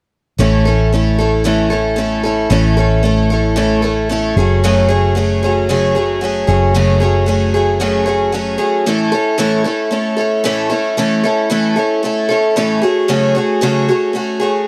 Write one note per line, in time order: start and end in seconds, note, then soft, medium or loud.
0.38 2.47 A1 medium
0.38 0.65 A2 medium
0.38 0.66 E3 medium
0.38 0.66 A3 medium
0.38 0.66 C#4 medium
0.38 0.66 E4 medium
0.38 0.64 A4 medium
0.65 0.91 A3 soft
0.65 0.92 C#4 soft
0.65 0.93 E4 soft
0.65 0.92 A4 soft
0.93 1.19 A3 soft
0.93 1.19 C#4 medium
0.93 1.19 E4 medium
0.93 1.17 A4 medium
1.19 1.44 A3 soft
1.19 1.44 C#4 soft
1.19 1.45 E4 soft
1.19 1.45 A4 soft
1.44 1.71 A2 medium
1.44 1.71 E3 medium
1.44 1.72 A3 medium
1.44 1.71 C#4 medium
1.44 1.70 E4 medium
1.44 1.69 A4 medium
1.70 1.95 A3 soft
1.70 1.97 C#4 soft
1.70 1.97 E4 soft
1.70 1.97 A4 soft
1.96 2.24 A3 medium
1.96 2.25 C#4 soft
1.96 2.24 E4 medium
1.96 2.22 A4 medium
2.23 2.50 A3 soft
2.23 2.50 C#4 soft
2.23 2.50 E4 soft
2.23 2.51 A4 soft
2.50 4.33 A1 medium
2.50 2.77 A2 medium
2.50 2.77 E3 medium
2.50 2.78 A3 medium
2.50 2.78 C#4 medium
2.50 2.77 E4 medium
2.50 2.76 A4 medium
2.77 3.02 A3 soft
2.77 3.02 C#4 soft
2.77 3.04 E4 soft
2.77 3.04 A4 soft
3.03 3.30 A3 medium
3.03 3.30 C#4 soft
3.03 3.31 E4 medium
3.03 3.29 A4 medium
3.30 3.55 A3 soft
3.30 3.56 C#4 soft
3.30 3.57 E4 soft
3.30 3.56 A4 soft
3.56 3.83 A2 medium
3.56 3.83 E3 medium
3.56 3.83 A3 medium
3.56 3.83 C#4 medium
3.56 3.82 E4 medium
3.56 3.81 A4 medium
3.82 4.08 A3 soft
3.82 4.09 C#4 soft
3.82 4.10 E4 soft
3.82 4.09 A4 soft
4.09 4.36 A3 medium
4.09 4.37 C#4 medium
4.09 4.37 E4 medium
4.09 4.37 A4 medium
4.36 6.44 F#1 medium
4.36 4.63 F#3 soft
4.36 4.63 A3 soft
4.36 4.64 C#4 soft
4.36 4.63 G#4 soft
4.64 4.90 F#2 medium
4.64 4.90 C#3 medium
4.64 4.90 F#3 medium
4.64 4.89 A3 medium
4.64 4.89 C#4 medium
4.64 4.87 G#4 medium
4.89 5.14 F#3 soft
4.89 5.15 A3 soft
4.89 5.16 C#4 medium
4.89 5.16 G#4 medium
5.15 5.42 F#3 medium
5.15 5.42 A3 medium
5.15 5.43 C#4 medium
5.15 5.42 G#4 medium
5.43 5.69 F#3 soft
5.43 5.69 A3 soft
5.43 5.69 C#4 soft
5.43 5.69 G#4 soft
5.69 5.95 F#2 medium
5.69 5.96 C#3 medium
5.69 5.96 F#3 medium
5.69 5.96 A3 medium
5.69 5.95 C#4 medium
5.69 5.94 G#4 medium
5.95 6.20 F#3 soft
5.95 6.21 A3 soft
5.95 6.22 C#4 soft
5.95 6.22 G#4 soft
6.21 6.48 F#3 medium
6.21 6.48 A3 medium
6.21 6.47 C#4 medium
6.21 6.46 G#4 medium
6.47 8.56 F#1 medium
6.47 6.74 F#3 soft
6.47 6.74 A3 soft
6.47 6.75 C#4 medium
6.47 6.74 G#4 soft
6.74 7.01 F#2 medium
6.74 7.01 C#3 medium
6.74 7.01 F#3 medium
6.74 7.01 A3 medium
6.74 7.00 C#4 medium
6.74 6.99 G#4 medium
7.00 7.25 F#3 soft
7.00 7.26 A3 soft
7.00 7.27 C#4 soft
7.00 7.27 G#4 soft
7.26 7.53 F#3 medium
7.26 7.54 A3 medium
7.26 7.54 C#4 medium
7.26 7.53 G#4 medium
7.54 7.80 F#3 soft
7.54 7.80 A3 soft
7.54 7.80 C#4 soft
7.54 7.81 G#4 soft
7.80 8.07 F#2 medium
7.80 8.07 C#3 medium
7.80 8.07 F#3 medium
7.80 8.06 A3 medium
7.80 8.06 C#4 medium
7.80 8.04 G#4 medium
8.06 8.31 F#3 soft
8.06 8.32 A3 soft
8.06 8.33 C#4 soft
8.06 8.33 G#4 soft
8.32 8.59 F#3 medium
8.32 8.59 A3 soft
8.32 8.58 C#4 medium
8.32 8.57 G#4 medium
8.58 8.87 F#3 soft
8.58 8.86 A3 soft
8.58 8.86 C#4 soft
8.58 8.86 G#4 medium
8.86 9.13 A2 medium
8.86 9.13 E3 medium
8.86 9.13 A3 medium
8.86 9.13 C#4 medium
8.86 9.12 E4 medium
8.86 9.11 A4 medium
9.12 9.37 A3 soft
9.12 9.38 C#4 soft
9.12 9.38 E4 soft
9.12 9.39 A4 medium
9.38 9.65 A2 medium
9.38 9.65 E3 medium
9.38 9.66 A3 medium
9.38 9.65 C#4 medium
9.38 9.64 E4 medium
9.38 9.63 A4 medium
9.64 9.90 A3 soft
9.64 9.91 C#4 soft
9.64 9.91 E4 soft
9.64 9.92 A4 soft
9.91 10.18 A3 medium
9.91 10.18 C#4 medium
9.91 10.17 E4 medium
9.91 10.15 A4 medium
10.17 10.44 A3 soft
10.17 10.44 C#4 soft
10.17 10.44 E4 soft
10.17 10.44 A4 soft
10.44 10.71 A2 medium
10.44 10.71 E3 medium
10.44 10.72 A3 medium
10.44 10.70 C#4 medium
10.44 10.69 E4 medium
10.44 10.69 A4 medium
10.70 10.97 A3 soft
10.70 10.98 C#4 soft
10.70 10.97 E4 medium
10.70 10.97 A4 medium
10.97 11.24 A2 medium
10.97 11.24 E3 medium
10.97 11.24 A3 medium
10.97 11.24 C#4 medium
10.97 11.24 E4 medium
10.97 11.22 A4 medium
11.24 11.50 A3 soft
11.24 11.50 C#4 soft
11.24 11.50 E4 medium
11.24 11.50 A4 medium
11.50 11.77 A2 medium
11.50 11.77 E3 medium
11.50 11.77 A3 medium
11.50 11.77 C#4 medium
11.50 11.76 E4 medium
11.50 11.75 A4 medium
11.76 12.02 A3 soft
11.76 12.03 C#4 soft
11.76 12.03 E4 soft
11.76 12.03 A4 soft
12.03 12.30 A3 soft
12.03 12.30 C#4 soft
12.03 12.29 E4 medium
12.03 12.27 A4 medium
12.29 12.56 A3 soft
12.29 12.56 C#4 soft
12.29 12.57 E4 soft
12.29 12.56 A4 medium
12.56 12.83 A2 medium
12.56 12.83 E3 medium
12.56 12.83 A3 medium
12.56 12.82 C#4 medium
12.56 12.83 E4 medium
12.56 12.81 A4 medium
12.82 13.08 A3 soft
12.82 13.09 C#4 soft
12.82 13.08 F#4 medium
12.82 13.09 G#4 medium
13.08 13.35 F#2 medium
13.08 13.35 C#3 medium
13.08 13.36 A3 medium
13.08 13.36 C#4 medium
13.08 13.35 F#4 medium
13.08 13.34 G#4 medium
13.35 13.61 A3 soft
13.35 13.62 C#4 soft
13.35 13.62 F#4 medium
13.35 13.62 G#4 soft
13.61 13.88 F#2 medium
13.61 13.88 C#3 medium
13.61 13.88 A3 medium
13.61 13.89 C#4 medium
13.61 13.88 F#4 medium
13.61 13.87 G#4 medium
13.88 14.12 A3 soft
13.88 14.13 C#4 soft
13.88 14.14 F#4 medium
13.88 14.15 G#4 soft
14.13 14.40 A3 soft
14.13 14.41 C#4 medium
14.13 14.40 F#4 medium
14.13 14.38 G#4 medium
14.40 14.67 A3 soft
14.40 14.67 C#4 soft
14.40 14.67 F#4 medium
14.40 14.67 G#4 medium